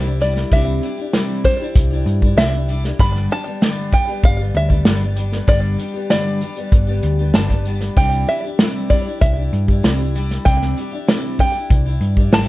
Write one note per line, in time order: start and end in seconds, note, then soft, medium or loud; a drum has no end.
0.00 0.43 C2 medium
0.00 0.17 C5 medium
0.04 0.20 D4 soft
0.04 0.21 E4 soft
0.04 0.20 G4 soft
0.19 0.51 G3 medium
0.19 0.52 D4 medium
0.19 0.52 E4 medium
0.19 0.52 G4 medium
0.19 0.53 D5 medium
0.19 closed hi-hat medium
0.36 snare soft
0.36 closed hi-hat soft
0.51 0.78 C2 medium
0.51 0.82 C3 medium
0.51 0.80 G3 medium
0.51 0.82 D4 medium
0.51 0.82 E4 medium
0.51 0.83 G4 medium
0.51 1.10 E5 medium
0.51 kick loud
0.51 closed hi-hat medium
0.81 0.97 G3 medium
0.81 0.98 D4 medium
0.81 0.98 E4 medium
0.81 0.96 G4 medium
0.81 closed hi-hat medium
0.97 1.13 D4 soft
0.97 1.14 E4 soft
0.97 1.13 G4 medium
1.13 1.44 C3 medium
1.13 1.43 G3 medium
1.13 1.44 D4 medium
1.13 1.45 E4 medium
1.13 1.45 G4 medium
1.13 snare medium
1.13 closed hi-hat medium
1.44 1.60 G3 medium
1.44 1.60 D4 medium
1.44 1.60 E4 medium
1.44 1.58 G4 medium
1.44 2.40 C5 medium
1.44 kick medium
1.44 closed hi-hat medium
1.59 1.92 D4 soft
1.59 1.91 E4 medium
1.59 1.89 G4 soft
1.59 closed hi-hat soft
1.75 2.02 C2 loud
1.75 kick loud
1.75 closed hi-hat medium
1.90 2.23 D4 soft
1.90 2.22 E4 soft
1.90 2.20 G4 medium
2.06 2.33 G2 medium
2.06 closed hi-hat medium
2.22 2.37 D4 soft
2.22 2.38 E4 medium
2.22 2.37 G4 soft
2.22 kick medium
2.36 2.91 C2 medium
2.36 2.53 C3 medium
2.36 2.53 G3 loud
2.36 2.53 D4 medium
2.36 2.53 E4 medium
2.36 2.51 G4 medium
2.36 3.00 E5 loud
2.36 snare loud
2.36 closed hi-hat medium
2.52 2.69 D4 soft
2.52 2.69 E4 soft
2.52 2.68 G4 soft
2.52 closed hi-hat soft
2.68 2.84 G3 medium
2.68 2.85 D4 medium
2.68 2.85 E4 medium
2.68 2.83 G4 medium
2.68 closed hi-hat medium
2.84 3.00 D4 soft
2.84 3.00 E4 soft
2.84 2.99 G4 soft
2.84 snare soft
2.84 closed hi-hat soft
2.99 3.27 G1 medium
2.99 3.30 G2 medium
2.99 3.31 D3 medium
2.99 3.30 G3 medium
2.99 3.31 B3 medium
2.99 3.31 D4 medium
2.99 3.32 G4 medium
2.99 3.29 B5 loud
2.99 kick loud
2.99 closed hi-hat medium
3.15 snare soft
3.15 closed hi-hat soft
3.31 3.46 G3 medium
3.31 3.46 B3 medium
3.31 3.45 D4 medium
3.31 3.44 G4 medium
3.31 3.89 A5 medium
3.31 closed hi-hat medium
3.45 3.61 G3 soft
3.45 3.62 B3 soft
3.45 3.61 D4 medium
3.45 3.61 G4 medium
3.61 3.92 G2 medium
3.61 3.93 D3 medium
3.61 3.90 G3 medium
3.61 3.92 B3 medium
3.61 3.93 D4 medium
3.61 3.93 G4 medium
3.61 snare medium
3.61 closed hi-hat medium
3.91 4.07 G3 medium
3.91 4.08 B3 medium
3.91 4.08 D4 medium
3.91 4.06 G4 medium
3.91 4.22 G5 medium
3.91 kick medium
3.91 closed hi-hat medium
4.07 4.40 G3 soft
4.07 4.40 B3 soft
4.07 4.39 D4 soft
4.07 4.37 G4 medium
4.07 closed hi-hat soft
4.23 4.51 G1 loud
4.23 4.56 F5 medium
4.23 kick loud
4.23 closed hi-hat medium
4.38 4.71 G3 soft
4.38 4.71 B3 soft
4.38 4.70 D4 soft
4.38 4.69 G4 medium
4.55 4.82 D2 medium
4.55 5.14 E5 medium
4.55 closed hi-hat medium
4.70 4.85 G3 soft
4.70 4.85 B3 soft
4.70 4.86 D4 soft
4.70 4.86 G4 medium
4.70 kick medium
4.70 closed hi-hat soft
4.85 5.40 G1 medium
4.85 5.01 G2 medium
4.85 5.01 D3 medium
4.85 5.02 G3 medium
4.85 5.01 B3 medium
4.85 5.01 D4 medium
4.85 5.00 G4 medium
4.85 snare loud
4.85 closed hi-hat medium
5.02 5.15 G3 soft
5.02 5.16 B3 soft
5.02 5.17 D4 soft
5.02 5.17 G4 soft
5.16 5.32 G3 medium
5.16 5.32 B3 medium
5.16 5.33 D4 medium
5.16 5.31 G4 medium
5.16 closed hi-hat medium
5.32 5.48 G3 soft
5.32 5.48 B3 soft
5.32 5.48 D4 soft
5.32 5.48 G4 soft
5.32 snare soft
5.32 closed hi-hat soft
5.48 5.75 G1 medium
5.48 5.79 G2 medium
5.48 5.79 D3 medium
5.48 5.77 G3 medium
5.48 5.78 B3 medium
5.48 5.80 D4 medium
5.48 5.80 G4 medium
5.48 6.09 D5 loud
5.48 kick loud
5.48 closed hi-hat medium
5.78 5.94 G3 medium
5.78 5.95 B3 medium
5.78 5.94 D4 medium
5.78 5.93 G4 medium
5.78 closed hi-hat medium
5.94 6.10 G3 soft
5.94 6.10 B3 soft
5.94 6.10 D4 soft
5.94 6.10 G4 medium
6.10 6.41 G2 medium
6.10 6.41 D3 medium
6.10 6.40 G3 medium
6.10 6.41 B3 medium
6.10 6.42 D4 medium
6.10 6.42 G4 medium
6.10 6.99 D5 medium
6.10 snare loud
6.10 closed hi-hat medium
6.41 6.56 G3 medium
6.41 6.57 B3 medium
6.41 6.57 D4 medium
6.41 6.55 G4 medium
6.41 closed hi-hat medium
6.56 6.89 G3 soft
6.56 6.88 B3 soft
6.56 6.87 D4 soft
6.56 6.86 G4 medium
6.56 closed hi-hat soft
6.72 6.99 G1 loud
6.72 kick loud
6.72 closed hi-hat medium
6.87 7.20 G3 soft
6.87 7.20 B3 medium
6.87 7.19 D4 soft
6.87 7.18 G4 medium
7.03 7.30 D2 medium
7.03 closed hi-hat medium
7.19 7.35 G3 soft
7.19 7.35 B3 soft
7.19 7.35 D4 soft
7.19 7.34 G4 medium
7.34 7.88 G1 medium
7.34 7.50 G2 medium
7.34 7.50 D3 medium
7.34 7.51 G3 medium
7.34 7.51 B3 medium
7.34 7.50 D4 medium
7.34 7.49 G4 medium
7.34 7.97 A5 loud
7.34 snare loud
7.34 closed hi-hat medium
7.50 7.65 G3 soft
7.50 7.66 B3 soft
7.50 7.66 D4 soft
7.50 7.65 G4 soft
7.50 kick medium
7.50 snare soft
7.50 closed hi-hat soft
7.65 7.97 G3 medium
7.65 7.97 B3 medium
7.65 7.97 D4 medium
7.65 7.98 G4 medium
7.65 closed hi-hat medium
7.81 snare soft
7.81 closed hi-hat soft
7.97 8.24 C2 medium
7.97 8.28 C3 medium
7.97 8.27 G3 medium
7.97 8.28 D4 medium
7.97 8.29 E4 medium
7.97 8.29 G4 medium
7.97 8.29 G5 loud
7.97 kick loud
7.97 closed hi-hat medium
8.12 closed hi-hat soft
8.28 8.43 G3 medium
8.28 8.44 D4 medium
8.28 8.44 E4 medium
8.28 8.43 G4 medium
8.28 8.89 E5 medium
8.28 closed hi-hat medium
8.44 8.59 D4 soft
8.44 8.59 E4 soft
8.44 8.59 G4 medium
8.59 8.90 C3 medium
8.59 8.89 G3 medium
8.59 8.90 D4 medium
8.59 8.91 E4 medium
8.59 8.91 G4 medium
8.59 snare medium
8.59 closed hi-hat medium
8.90 9.05 G3 medium
8.90 9.06 D4 medium
8.90 9.06 E4 medium
8.90 9.04 G4 medium
8.90 9.21 D5 medium
8.90 kick medium
8.90 closed hi-hat medium
9.05 9.38 D4 soft
9.05 9.37 E4 medium
9.05 9.34 G4 medium
9.05 closed hi-hat soft
9.21 9.48 C2 loud
9.21 10.41 E5 medium
9.21 kick loud
9.21 closed hi-hat medium
9.36 9.69 D4 soft
9.36 9.68 E4 soft
9.36 9.66 G4 soft
9.53 9.79 G2 medium
9.53 closed hi-hat medium
9.68 9.84 D4 soft
9.68 9.84 E4 soft
9.68 9.83 G4 soft
9.68 kick medium
9.68 closed hi-hat soft
9.83 10.37 C2 medium
9.83 9.98 C3 medium
9.83 9.99 G3 medium
9.83 9.99 D4 medium
9.83 9.99 E4 medium
9.83 9.97 G4 medium
9.83 snare loud
9.83 closed hi-hat medium
9.98 10.15 D4 soft
9.98 10.15 E4 soft
9.98 10.14 G4 medium
10.15 10.45 G3 medium
10.15 10.45 D4 medium
10.15 10.45 E4 medium
10.15 10.46 G4 medium
10.15 closed hi-hat medium
10.31 snare soft
10.31 closed hi-hat soft
10.45 10.73 C2 medium
10.45 10.76 C3 medium
10.45 10.75 G3 medium
10.45 10.76 D4 medium
10.45 10.77 E4 medium
10.45 10.77 G4 medium
10.45 11.03 G5 medium
10.45 kick loud
10.45 closed hi-hat medium
10.62 snare soft
10.76 10.92 G3 medium
10.76 10.92 D4 medium
10.76 10.92 E4 medium
10.76 10.90 G4 medium
10.76 closed hi-hat soft
10.91 11.07 D4 soft
10.91 11.08 E4 medium
10.91 11.07 G4 medium
11.07 11.39 C3 medium
11.07 11.38 G3 medium
11.07 11.39 D4 medium
11.07 11.40 E4 medium
11.07 11.40 G4 medium
11.07 snare loud
11.07 closed hi-hat medium
11.39 11.54 G3 medium
11.39 11.55 D4 medium
11.39 11.56 E4 medium
11.39 11.54 G4 medium
11.39 12.33 G5 medium
11.39 kick medium
11.39 closed hi-hat medium
11.55 11.87 D4 soft
11.55 11.86 E4 medium
11.55 11.84 G4 medium
11.55 closed hi-hat soft
11.70 11.97 C2 loud
11.70 kick loud
11.70 closed hi-hat medium
11.86 12.18 D4 soft
11.86 12.17 E4 medium
11.86 12.15 G4 soft
12.01 12.28 G2 medium
12.01 closed hi-hat medium
12.16 12.32 D4 soft
12.16 12.33 E4 soft
12.16 12.32 G4 medium
12.16 kick medium
12.32 12.48 G#1 medium
12.32 12.48 C3 medium
12.32 12.48 G3 medium
12.32 12.48 D4 medium
12.32 12.48 E4 loud
12.32 12.46 G4 medium
12.32 12.48 A5 loud
12.32 snare loud
12.32 closed hi-hat medium